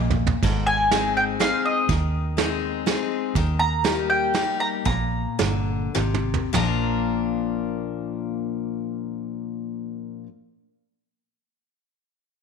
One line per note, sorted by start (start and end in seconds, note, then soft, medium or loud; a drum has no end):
0.00 0.35 A#1 medium
0.00 0.40 A#2 medium
0.00 0.14 D#5 medium
0.10 floor tom loud
0.27 floor tom loud
0.43 1.51 G#1 medium
0.43 1.36 G#2 medium
0.43 kick loud
0.43 crash medium
0.67 1.12 G#5 loud
0.91 1.38 G#3 medium
0.91 1.38 C4 medium
0.91 1.39 D#4 medium
0.91 1.39 G#4 medium
0.91 snare medium
0.91 closed hi-hat medium
1.17 1.23 G5 medium
1.40 1.86 G#3 soft
1.40 1.87 C4 medium
1.40 1.87 D#4 medium
1.40 1.87 G#4 medium
1.40 1.66 F5 medium
1.40 snare medium
1.40 closed hi-hat medium
1.65 2.59 D#5 medium
1.89 2.97 D#2 medium
1.89 2.82 D#3 medium
1.89 kick loud
1.89 closed hi-hat medium
2.37 2.84 G#3 medium
2.37 2.84 C4 medium
2.37 2.84 D#4 medium
2.37 2.85 G#4 medium
2.37 snare medium
2.37 closed hi-hat medium
2.86 3.33 G#3 soft
2.86 3.33 C4 medium
2.86 3.33 D#4 medium
2.86 3.34 G#4 medium
2.86 snare medium
2.86 closed hi-hat medium
3.35 4.46 D#2 medium
3.35 4.30 D#3 medium
3.35 kick loud
3.35 closed hi-hat medium
3.59 4.09 A#5 loud
3.84 4.32 G3 medium
3.84 4.32 A#3 medium
3.84 4.32 D#4 medium
3.84 4.33 G4 medium
3.84 snare medium
3.84 closed hi-hat medium
4.10 4.57 G5 medium
4.34 4.83 G3 medium
4.34 4.83 A#3 medium
4.34 4.84 D#4 medium
4.34 4.84 G4 medium
4.34 snare medium
4.34 closed hi-hat medium
4.60 4.67 A#5 medium
4.85 5.25 A#1 medium
4.85 5.89 A#2 medium
4.85 5.91 A#5 medium
4.85 kick loud
4.85 closed hi-hat medium
5.39 5.87 G1 medium
5.39 5.92 D3 medium
5.39 snare medium
5.39 closed hi-hat medium
5.95 6.46 G#1 medium
5.95 6.51 C3 medium
5.95 snare medium
6.14 mid tom medium
6.34 floor tom medium
6.53 10.24 A#1 medium
6.53 10.26 A#2 medium
6.53 10.27 F3 medium
6.53 10.27 A#3 medium
6.53 10.28 D4 medium
6.53 10.29 F4 medium
6.53 10.23 A#5 medium
6.53 snare medium
6.53 floor tom medium